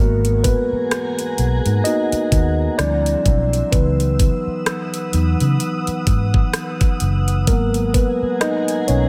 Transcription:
Already playing: G#1 G#3 G#4 A#4 F#5 G#5 A#5
0.00 A#3 B3 F#4
0.25 closed hi-hat
0.44 B3 B4, kick, closed hi-hat
0.72 muted fingered electric bass stroke
0.91 cross-stick, closed hi-hat
1.19 closed hi-hat
1.38 B1, closed hi-hat
1.66 G#2, closed hi-hat
1.84 A#3 B3 D#4 F#4 D#5, closed hi-hat
2.12 muted fingered electric bass stroke, closed hi-hat
2.32 D#2, kick, closed hi-hat
2.78 D2 F3 G3 C4 D4 E4 D5 E6, cross-stick, closed hi-hat
3.06 closed hi-hat
3.26 B1, kick, closed hi-hat
3.53 closed hi-hat
3.72 C#2 E3 F#3 B3 D#4 B4 F#5 D#6, kick, closed hi-hat
4.00 closed hi-hat
4.19 kick, closed hi-hat
4.47 muted fingered electric bass stroke
4.66 cross-stick, closed hi-hat
4.94 closed hi-hat
5.13 E2 E3 F#3 B3 D#4, closed hi-hat
5.40 C#3, closed hi-hat
5.60 closed hi-hat
5.87 muted fingered electric bass stroke, closed hi-hat
6.07 G#2, kick, closed hi-hat
6.34 kick
6.53 cross-stick, closed hi-hat
6.81 kick, closed hi-hat
7.00 F#1, closed hi-hat
7.28 closed hi-hat
7.47 G#1 F#3 G#3 A#3 B3 G#4 A#4 G#5 A#5, kick, closed hi-hat
7.74 closed hi-hat
7.94 B3 B4, kick, closed hi-hat
8.22 muted fingered electric bass stroke
8.41 D#4 D#5, cross-stick, closed hi-hat
8.68 closed hi-hat
8.88 B1 C#4 C#5, closed hi-hat

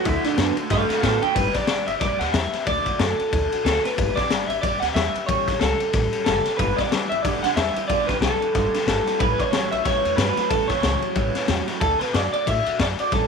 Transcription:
0.05 D2 D3 A3 D4 E4 F#4 A4, kick, ride
0.23 D3 A3 D4 F#4 A4, muted upright bass stroke, snare, ride
0.37 F#2 D3 A3 B3 D4 F#4 A4, snare, ride
0.56 D3 A3 D4 F#4 A4, muted upright bass stroke, ride
0.70 G2 D3 A3 D4 F#4 A4 F5, kick, snare, ride
0.89 D3 A3 D4 F#4 A4 F5, muted upright bass stroke, snare, ride
1.02 A2 D3 A3 B3 D4 F#4 A4 F5, kick, snare, ride
1.22 D3 A3 D4 F#4 A4 G5, muted upright bass stroke, ride
1.35 G1 G3 D4 G4 B4, kick, ride
1.54 D4 G4 B4 D5, kick, snare, ride
1.67 G1 G3 D4 G4 B4, snare, ride
1.87 G1 D4 G4 B4 E5, ride
2.00 G1 G3 D4 G4 B4 D5, kick, snare, ride
2.19 D2 D4 G4 B4 F#5, snare, ride
2.33 E2 G3 D4 G4 B4 E5, snare, ride
2.52 D4 G4 B4, snare, ride
2.67 D2 D3 A3 D4 F#4 A4 D5, kick, ride
2.86 D2 D4 F#4 A4, kick, ride
2.99 F#2 D3 A3 D4 F#4 A4, snare, ride
3.18 D4 F#4 A4, muted upright bass stroke, ride
3.31 D2 A3 D4 F#4 A4, kick, ride
3.51 D4 F#4 A4, muted upright bass stroke, ride
3.64 D2 D3 A3 D4 F#4 A4, snare, ride
3.83 D4 F#4 A4 B4, snare, ride
3.97 G1 G3 D4 G4 B4, kick, ride
4.16 D4 G4 B4 D5, kick, snare, ride
4.29 G1 G3 D4 G4 B4, snare, ride
4.47 G1 G4 B4 E5, ride
4.51 D4
4.61 G1 G3 D4 G4 D5, kick, ride
4.66 B4
4.80 D2 G4 B4 F#5, snare, ride
4.85 D4
4.94 E2 G3 D4 G4 B4 E5, snare, ride
5.13 D4 G4 B4, muted upright bass stroke, ride
5.26 A1 A2 E3 G3 C#4 G4 A4 C#5, kick, ride
5.46 A1 G3 C#4 G4 A4, kick, snare, ride
5.60 C#2 A2 E3 G3 C#4 G4 A4, snare, ride
5.79 G3 C#4 G4 A4, muted upright bass stroke, ride
5.92 A1 G3 C#4 G4 A4, kick, snare, ride
6.12 G3 C#4 G4 A4, ride
6.24 F#1 A2 E3 G3 C#4 G4 A4, snare, ride
6.44 G3 C#4 G4 A4, muted upright bass stroke, snare, ride
6.57 G1 G2 D3 G3 D4 G4 B4, kick, ride
6.61 B4
6.76 G2 D3 G4 B4 D5, muted upright bass stroke, kick, snare, ride
6.82 D4
6.91 G1 G2 E3 G3 D4 G4 B4, snare, ride
7.09 G1 G2 E3 G4 B4 E5, ride
7.15 D4
7.22 G1 G2 D3 G3 D4 G4 D5, kick, ride
7.27 B4
7.43 D2 G2 D3 D4 G4 B4 F#5, snare, ride
7.56 E2 G2 E3 G3 D4 G4 B4 E5, snare, ride
7.76 G2 E3 D4 G4 B4, muted upright bass stroke, ride
7.88 G1 G2 D3 G3 D4 G4 D5, kick, ride
7.92 B4
8.07 G1 G2 D3 G4 B4, kick, snare, ride
8.11 D4
8.21 B1 G2 E3 G3 D4 G4 A4 B4, snare, ride
8.40 G2 E3 G4 B4, muted upright bass stroke, ride
8.45 D4
8.55 G1 G2 D3 G3 D4 G4 B4, kick, snare, ride
8.73 G2 D3 G4 B4, muted upright bass stroke, snare, ride
8.77 D4
8.86 G1 G2 E3 G3 D4 G4 A4 B4, snare, ride
9.05 G2 E3 D4 G4 B4, snare, ride
9.19 A1 A2 E3 G3 C#4 E4 A4 B4, kick, ride
9.38 A2 E3 G3 C#4 E4 A4 C#5, kick, ride
9.51 A1 A2 E3 F#3 G3 C#4 E4 A4, snare, ride
9.71 A1 A2 F#3 G3 C#4 E4 A4 E5, ride
9.85 A1 A2 E3 G3 C#4 E4 A4 C#5, kick, snare, ride
10.04 E2 A2 E3 G3 C#4 A4, ride
10.17 G2 A2 E3 F#3 G3 C#4 E4 A4 B4, snare, ride
10.37 A2 F#3 G3 C#4 E4 A4, muted upright bass stroke, snare, ride
10.49 A1 A2 E3 G3 C#4 E4 A4, kick, ride
10.68 A1 A2 E3 E4 A4 C#5, kick, snare, ride
10.72 G3 C#4
10.82 C#2 A2 E3 F#3 G3 C#4 E4 A4, snare, ride
11.01 A2 F#3 G3 C#4 E4 A4, ride
11.15 A1 A2 E3 G3 C#4 E4 A4, kick, ride
11.34 A2 E3 G3 C#4 E4 A4, snare, ride
11.47 E2 A2 E3 F#3 G3 C#4 E4 A4, snare, ride
11.67 A2 F#3 G3 C#4 E4 A4, snare, ride
11.80 D2 D3 A3 D4 F#4 A4, kick, ride
11.99 D4 F#4 A4 B4, snare, ride
12.12 F#2 D3 A3 D4 F#4 A4 D5, snare, ride
12.32 D4 F#4 A4 D5, muted upright bass stroke, ride
12.45 A2 A3 D4 F#4 A4 E5, kick, ride
12.65 D4 F#4 A4, muted upright bass stroke, ride
12.79 F#2 D3 A3 D4 F#4 A4 D5, kick, snare, ride
12.98 D4 F#4 A4 D5, muted upright bass stroke, ride
13.12 A1 A2 E3 G3 C#4 G4 A4, kick, snare, ride

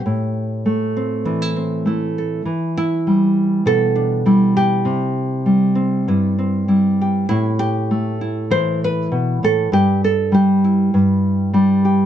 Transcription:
Already playing: G4
0.06 A2
0.66 A3
0.97 C4
1.25 E3 D4
1.42 E4
1.56 C4
1.86 A3 E4
2.18 A4
2.45 E3
2.77 E4
3.07 G3
3.66 B2 A4
3.96 D4
4.26 G3 E4
4.57 G4
4.85 C3
5.46 G3
5.75 C4
6.08 G2 E4
6.38 C4
6.68 G3 E4
7.01 G4
7.29 A2 E4
7.59 G4
7.91 A3
8.21 E4
8.50 E3 C5
8.84 B4
9.12 B2
9.43 A2 A4
9.72 G2 G4
10.04 A4
10.32 G3 G4
10.64 E4
10.94 G2
11.53 G3 D4
11.85 G4

